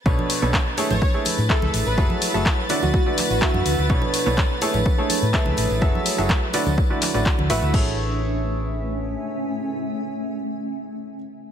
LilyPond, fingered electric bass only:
\new Staff \with { instrumentName = "Fingered electric bass" } { \clef bass \time 4/4 \key a \major \tempo 4 = 125 b,,16 r8 b,,16 r8. a,,16 r8. a,16 r16 cis,16 a,,16 a,,16 | fis,,16 r8 fis,,16 r8. d,16 r8. a,,16 r16 fis,16 d,16 d,16 | b,,16 r8 b,,16 r8. a,,16 r8. a,16 r16 cis,16 a,,16 a,,16 | fis,,16 r8 fis,,16 r8. d,16 r8. a,,16 r16 d,16 a,,16 d,16 |
a,,2. r4 | r1 | }